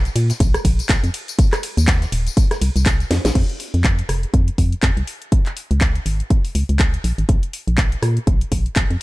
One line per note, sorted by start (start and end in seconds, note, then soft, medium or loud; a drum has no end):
0.05 closed hi-hat soft
0.05 tambourine soft
0.16 0.32 A#2 medium
0.16 closed hi-hat medium
0.16 open hi-hat loud
0.16 ride medium
0.30 snare soft
0.30 closed hi-hat soft
0.30 tambourine medium
0.40 0.57 A#1 loud
0.40 kick loud
0.40 closed hi-hat medium
0.40 closed hi-hat loud
0.40 ride medium
0.40 tambourine medium
0.54 cross-stick medium
0.54 closed hi-hat soft
0.54 tambourine soft
0.65 0.81 A#1 loud
0.65 kick medium
0.65 closed hi-hat medium
0.65 open hi-hat loud
0.65 ride medium
0.79 closed hi-hat soft
0.79 tambourine medium
0.89 0.98 A#1 medium
0.89 kick loud
0.89 snare loud
0.89 clap loud
0.89 closed hi-hat medium
0.89 closed hi-hat loud
0.89 ride medium
0.89 tambourine medium
1.04 1.10 F2 medium
1.04 closed hi-hat soft
1.04 tambourine soft
1.14 closed hi-hat medium
1.14 open hi-hat loud
1.14 ride medium
1.28 closed hi-hat soft
1.28 tambourine medium
1.39 kick loud
1.39 closed hi-hat medium
1.39 closed hi-hat loud
1.39 ride medium
1.39 tambourine medium
1.53 cross-stick medium
1.53 clap soft
1.53 closed hi-hat soft
1.53 tambourine soft
1.63 closed hi-hat medium
1.63 open hi-hat loud
1.63 ride medium
1.77 2.06 D#2 medium
1.77 closed hi-hat soft
1.77 tambourine medium
1.88 kick loud
1.88 snare loud
1.88 clap loud
1.88 closed hi-hat medium
1.88 closed hi-hat loud
1.88 ride medium
1.88 tambourine medium
2.02 snare medium
2.02 closed hi-hat soft
2.02 tambourine soft
2.12 2.29 D#1 medium
2.12 closed hi-hat medium
2.12 open hi-hat loud
2.12 ride medium
2.27 closed hi-hat soft
2.27 tambourine medium
2.37 kick loud
2.37 closed hi-hat medium
2.37 ride medium
2.37 tambourine medium
2.51 cross-stick medium
2.51 snare medium
2.51 closed hi-hat soft
2.51 tambourine soft
2.61 2.70 C2 medium
2.61 closed hi-hat medium
2.61 open hi-hat loud
2.61 ride medium
2.76 3.04 C2 medium
2.76 closed hi-hat soft
2.76 tambourine medium
2.86 kick loud
2.86 clap loud
2.86 closed hi-hat medium
2.86 closed hi-hat loud
2.86 ride medium
2.86 tambourine medium
3.00 closed hi-hat soft
3.00 tambourine soft
3.11 3.19 F2 loud
3.11 snare medium
3.11 closed hi-hat medium
3.11 open hi-hat loud
3.11 ride medium
3.25 3.31 A#1 medium
3.25 snare medium
3.25 closed hi-hat medium
3.25 closed hi-hat soft
3.25 tambourine medium
3.35 3.44 F2 loud
3.35 kick loud
3.35 closed hi-hat medium
3.35 crash medium
3.49 closed hi-hat soft
3.60 open hi-hat loud
3.74 4.02 F2 medium
3.74 closed hi-hat soft
3.84 kick loud
3.84 clap loud
3.84 closed hi-hat medium
3.99 closed hi-hat soft
4.09 4.25 F1 medium
4.09 cross-stick medium
4.09 open hi-hat loud
4.23 closed hi-hat soft
4.34 4.50 F2 medium
4.34 kick loud
4.34 closed hi-hat loud
4.48 closed hi-hat soft
4.58 4.75 F2 medium
4.58 kick medium
4.58 open hi-hat loud
4.72 closed hi-hat soft
4.83 4.91 F2 medium
4.83 kick loud
4.83 clap loud
4.83 closed hi-hat loud
4.97 5.03 C2 medium
4.97 closed hi-hat soft
5.07 open hi-hat loud
5.22 closed hi-hat soft
5.32 kick loud
5.32 closed hi-hat medium
5.46 clap soft
5.46 closed hi-hat soft
5.57 open hi-hat loud
5.71 5.99 C#2 medium
5.71 closed hi-hat soft
5.81 kick loud
5.81 clap loud
5.81 closed hi-hat medium
5.95 closed hi-hat soft
6.06 6.22 G#1 medium
6.06 open hi-hat loud
6.20 closed hi-hat soft
6.30 kick loud
6.30 closed hi-hat medium
6.45 open hi-hat medium
6.55 6.64 C#2 medium
6.55 open hi-hat loud
6.69 6.98 C#2 medium
6.69 closed hi-hat soft
6.79 kick loud
6.79 clap loud
6.79 closed hi-hat medium
6.94 closed hi-hat soft
7.04 7.13 A#1 loud
7.04 open hi-hat loud
7.18 7.25 G#1 medium
7.18 closed hi-hat soft
7.29 7.37 A#1 loud
7.29 kick loud
7.29 closed hi-hat medium
7.43 closed hi-hat soft
7.53 open hi-hat loud
7.67 7.96 A#1 medium
7.67 closed hi-hat soft
7.78 kick loud
7.78 clap loud
7.78 closed hi-hat medium
7.92 closed hi-hat soft
8.02 8.19 A#2 medium
8.02 cross-stick medium
8.02 open hi-hat loud
8.17 closed hi-hat soft
8.27 8.44 A#1 loud
8.27 kick loud
8.27 closed hi-hat medium
8.41 closed hi-hat soft
8.52 8.68 A#1 loud
8.52 kick medium
8.52 open hi-hat loud
8.66 closed hi-hat soft
8.76 8.85 A#1 medium
8.76 kick loud
8.76 clap loud
8.76 closed hi-hat medium
8.90 8.97 F2 medium
8.90 closed hi-hat soft